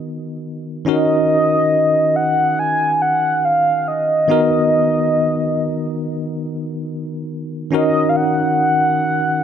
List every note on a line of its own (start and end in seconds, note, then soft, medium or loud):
0.00 0.81 D#3 medium
0.00 0.82 B3 medium
0.00 0.82 D#4 medium
0.00 0.83 F#4 medium
0.00 0.87 A#4 medium
0.85 4.24 D#3 medium
0.85 4.25 C#4 medium
0.85 4.25 D#4 medium
0.85 4.26 F#4 medium
0.85 4.26 A#4 medium
0.85 2.17 D#5 loud
2.16 2.61 F#5 loud
2.59 3.03 G#5 loud
3.02 3.46 F#5 loud
3.45 3.89 F5 loud
3.88 6.44 D#5 loud
4.28 7.67 D#3 medium
4.28 7.68 B3 medium
4.28 7.68 D#4 medium
4.28 7.69 F#4 medium
4.28 7.69 A#4 medium
7.71 9.44 D#3 medium
7.71 9.44 C#4 medium
7.71 9.44 D#4 medium
7.71 9.44 F#4 medium
7.71 9.44 A#4 medium
7.71 8.11 D#5 medium
8.09 8.18 F5 medium
8.16 9.44 F#5 loud